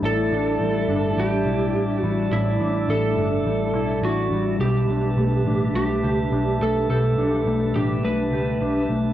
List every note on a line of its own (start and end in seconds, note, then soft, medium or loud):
0.00 0.28 A1 medium
0.00 2.31 A2 medium
0.00 0.60 G3 soft
0.00 9.13 G3 medium
0.00 0.32 D4 soft
0.00 1.46 E4 medium
0.00 4.57 D5 medium
0.00 4.57 E5 soft
0.00 9.13 A5 medium
0.05 1.22 A4 medium
0.31 0.57 A1 medium
0.31 0.88 D4 medium
0.60 0.85 A1 medium
0.60 1.17 G3 medium
0.88 1.14 G1 medium
0.88 1.75 D4 medium
1.17 1.43 A1 medium
1.17 2.03 G3 medium
1.17 1.97 G4 medium
1.46 1.74 B1 medium
1.46 2.32 E4 medium
1.74 2.00 A1 medium
1.74 2.60 D4 soft
1.97 2.37 F#4 medium
2.03 2.28 A1 medium
2.03 2.89 G3 medium
2.32 2.57 A1 medium
2.32 4.61 A2 medium
2.32 3.74 E4 medium
2.32 2.91 E4 medium
2.60 2.86 A1 medium
2.60 3.17 D4 medium
2.88 3.14 A1 medium
2.88 3.46 G3 soft
2.88 4.00 A4 medium
3.17 3.43 G1 medium
3.17 4.03 D4 medium
3.45 3.73 A1 medium
3.45 4.32 G3 soft
3.73 3.99 B1 medium
3.73 4.61 E4 medium
4.02 4.28 A1 medium
4.02 4.89 D4 soft
4.02 4.60 F#4 medium
4.31 4.56 A1 medium
4.31 5.18 G3 soft
4.59 4.85 B1 medium
4.59 6.88 B2 medium
4.59 5.75 G4 medium
4.59 6.02 G4 medium
4.59 9.13 B4 medium
4.59 9.13 E5 medium
4.88 5.14 B1 medium
4.88 5.46 D4 medium
5.17 5.42 B1 medium
5.17 5.74 A3 medium
5.45 5.71 A1 medium
5.45 6.32 D4 medium
5.74 6.00 B1 medium
5.74 6.61 A3 medium
5.74 6.57 G4 medium
6.03 6.28 C#2 medium
6.03 6.89 G4 medium
6.32 6.57 B1 medium
6.32 7.18 D4 medium
6.61 6.86 B1 medium
6.61 7.47 A3 medium
6.61 6.89 A4 medium
6.89 7.14 B1 medium
6.89 9.13 B2 medium
6.89 8.31 G4 medium
6.89 7.78 A4 medium
7.17 7.43 B1 medium
7.17 7.75 D4 medium
7.46 7.71 B1 medium
7.46 8.04 A3 soft
7.75 8.00 A1 medium
7.75 8.61 D4 medium
7.75 8.05 G4 medium
8.04 8.32 B1 medium
8.04 8.89 A3 soft
8.04 8.86 B4 medium
8.32 8.57 C#2 medium
8.32 9.13 G4 medium
8.61 8.86 B1 medium
8.61 9.13 D4 medium
8.89 9.13 B1 medium
8.89 9.13 A3 medium